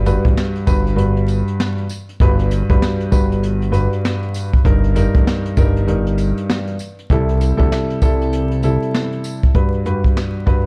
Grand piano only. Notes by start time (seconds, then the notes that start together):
0.06 G2 G3 F#4 B4
0.67 G2 G3 F#4 B4
0.96 G2 G3 F#4 B4
2.21 G2 G3 F#4 B4
2.70 G2 G3 F#4 B4
3.12 G2 G3 F#4 B4
3.71 G2 G3 F#4 B4
4.65 G2 G3 D#4 A#4
4.95 G2 G3 D#4 A#4
5.57 G2 G3 D#4 A#4
5.87 G2 G3 D#4 A#4
7.11 C3 G3 E4 A4
7.57 C3 G3 E4 A4
8.02 C3 G3 E4 A4
8.63 C3 G3 E4 A4
9.55 G2 G3 F#4 B4
9.86 G2 G3 F#4 B4
10.46 G2 G3 F#4 B4